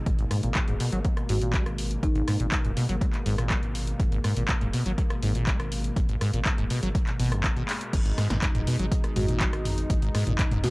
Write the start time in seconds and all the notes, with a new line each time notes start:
Already playing: B2 G#3
0.06 G#1 G#2 A#3, kick, closed hi-hat
0.19 G#1, closed hi-hat
0.31 G#2, cross-stick, open hi-hat
0.43 G#1 A#2, closed hi-hat
0.55 G#2, kick, clap, closed hi-hat
0.68 D#1 G#2, closed hi-hat
0.80 B2, open hi-hat
0.92 G#1 F#3, closed hi-hat
1.05 F#3, kick, closed hi-hat
1.17 cross-stick, closed hi-hat
1.29 G#1 G#2 F#4, open hi-hat
1.42 A#2, closed hi-hat
1.53 G#3, kick, clap, closed hi-hat
1.66 G#1, cross-stick, closed hi-hat
1.78 open hi-hat
1.91 closed hi-hat
2.03 G#1 G#2 D#4, kick, closed hi-hat
2.15 G#1 D#4, closed hi-hat
2.28 G#2, cross-stick, open hi-hat
2.40 G#1 A#2, closed hi-hat
2.52 G#2, kick, clap, closed hi-hat
2.65 D#1 G#2, closed hi-hat
2.77 B2, open hi-hat
2.89 G#1 F#3, closed hi-hat
3.01 F#3, kick, closed hi-hat
3.13 clap, closed hi-hat
3.26 G#1 G#2, open hi-hat
3.38 A#2, cross-stick, closed hi-hat
3.50 G#3, kick, cross-stick, clap, closed hi-hat
3.63 G#1, closed hi-hat
3.75 open hi-hat
3.87 closed hi-hat
4.00 G#1 G#2, kick, closed hi-hat
4.12 G#1, closed hi-hat
4.24 G#2, cross-stick, open hi-hat
4.37 G#1 A#2, closed hi-hat
4.48 G#2, kick, clap, closed hi-hat
4.61 D#1 G#2, closed hi-hat
4.73 B2, open hi-hat
4.86 G#1 F#3, closed hi-hat
4.98 F#3, kick, closed hi-hat
5.10 cross-stick, closed hi-hat
5.23 G#1 G#2, open hi-hat
5.35 A#2, closed hi-hat
5.47 G#3, kick, clap, closed hi-hat
5.60 G#1, cross-stick, closed hi-hat
5.72 open hi-hat
5.84 closed hi-hat
5.96 G#1 G#2, kick, closed hi-hat
6.09 G#1, closed hi-hat
6.21 G#2, cross-stick, open hi-hat
6.33 G#1 A#2, closed hi-hat
6.45 G#2, kick, clap, closed hi-hat
6.58 D#1 G#2, closed hi-hat
6.70 B2, open hi-hat
6.83 G#1 F#3, closed hi-hat
6.95 F#3, kick, closed hi-hat
7.07 clap, closed hi-hat
7.19 G#1 B2, open hi-hat
7.32 F#2, cross-stick, closed hi-hat
7.44 C#3, kick, cross-stick, clap, closed hi-hat
7.56 G#1 B2, closed hi-hat
7.69 clap, open hi-hat
7.81 closed hi-hat
7.93 G#1 G#2 B2 G#3 D#4, kick, closed hi-hat, crash
8.06 G#1, closed hi-hat
8.18 G#2, cross-stick, snare, open hi-hat
8.30 G#1 A#2, snare, closed hi-hat, mid tom
8.42 G#2, kick, clap, closed hi-hat
8.55 D#1 G#2, closed hi-hat, mid tom
8.67 B2, open hi-hat
8.79 G#1 F#3, closed hi-hat
8.92 F#3, kick, closed hi-hat
9.04 cross-stick, closed hi-hat
9.16 G#1 G#2 F#4, mid tom, open hi-hat
9.28 A#2, closed hi-hat
9.40 G#3, kick, clap, closed hi-hat
9.53 G#1, cross-stick, closed hi-hat
9.65 mid tom, open hi-hat
9.78 closed hi-hat
9.90 G#1 G#2, kick, closed hi-hat
10.02 G#1, closed hi-hat
10.15 G#2, cross-stick, snare, open hi-hat
10.27 G#1 A#2, closed hi-hat, mid tom
10.39 G#2, kick, clap, closed hi-hat
10.51 D#1 G#2, closed hi-hat, mid tom
10.64 B2 F#4, snare, open hi-hat